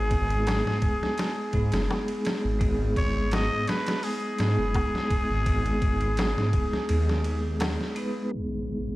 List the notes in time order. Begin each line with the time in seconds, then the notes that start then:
Already playing: G#1 G#3 B3 D#4 G#4
0.11 kick, ride
0.29 G#3 B3 D#4 G#4, ride
0.47 snare, ride, darbuka tek
0.66 G#2, snare
0.82 kick, ride
1.03 snare
1.18 snare, ride
1.51 G#2 G#3 B3 D#4, kick, ride
1.57 G#4
1.72 F#1, snare, ride
1.91 snare, darbuka tek
2.08 ride
2.25 snare, ride
2.45 G#1
2.59 G#1 G#3 B3 D#4 G#4, kick, ride
2.96 C#5, kick, ride
3.14 G#3 B3 D#4 G#4
3.31 D#5, snare, ride, darbuka tek
3.52 G#2
3.67 B4, snare, ride
3.87 snare, ride
4.03 G#4, open hi-hat
4.36 G#2 G#3 B3, ride
4.40 D#4 G#4, snare
4.59 F#1
4.74 kick, ride, darbuka tek
4.95 snare
5.11 kick, ride
5.31 G#1
5.45 G#1 G#3 B3 D#4 G#4, kick, ride
5.66 ride
5.82 kick, ride
6.00 G#3 B3 D#4 G#4, ride
6.17 snare, ride, darbuka tek
6.37 G#2, snare
6.53 kick, ride
6.73 snare
6.89 D#2, ride
7.09 snare
7.24 ride
7.60 snare, ride, darbuka tek
7.81 snare
7.95 G#3 B3 D#4 B4, ride
8.29 G#3, impact